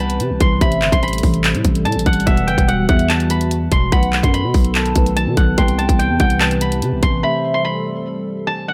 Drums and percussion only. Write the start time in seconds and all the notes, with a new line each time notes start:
0.10 closed hi-hat
0.20 closed hi-hat
0.41 kick, closed hi-hat
0.61 kick, closed hi-hat
0.72 closed hi-hat
0.82 clap, closed hi-hat
0.92 kick, closed hi-hat
1.03 closed hi-hat
1.08 closed hi-hat
1.13 closed hi-hat
1.18 closed hi-hat
1.23 kick, open hi-hat
1.34 closed hi-hat
1.44 clap, closed hi-hat
1.55 closed hi-hat
1.65 kick, closed hi-hat
1.75 closed hi-hat
1.85 closed hi-hat
1.92 closed hi-hat
1.99 closed hi-hat
2.06 kick, closed hi-hat
2.13 closed hi-hat
2.20 closed hi-hat
2.27 kick, closed hi-hat
2.37 closed hi-hat
2.48 closed hi-hat
2.58 kick, closed hi-hat
2.69 closed hi-hat
2.89 kick, closed hi-hat
2.99 closed hi-hat
3.10 clap, closed hi-hat
3.20 closed hi-hat
3.30 closed hi-hat
3.41 closed hi-hat
3.51 closed hi-hat
3.72 kick, closed hi-hat
3.92 kick, closed hi-hat
4.03 closed hi-hat
4.13 clap, closed hi-hat
4.23 kick, closed hi-hat
4.34 closed hi-hat
4.54 kick, open hi-hat
4.65 closed hi-hat
4.75 clap, closed hi-hat
4.86 closed hi-hat
4.96 kick, closed hi-hat
5.06 closed hi-hat
5.17 closed hi-hat
5.37 kick, closed hi-hat
5.58 kick, closed hi-hat
5.68 closed hi-hat
5.79 closed hi-hat
5.89 kick, closed hi-hat
6.00 closed hi-hat
6.20 kick, closed hi-hat
6.30 closed hi-hat
6.41 clap, closed hi-hat
6.51 closed hi-hat
6.61 closed hi-hat
6.72 closed hi-hat
6.82 closed hi-hat
7.03 kick, closed hi-hat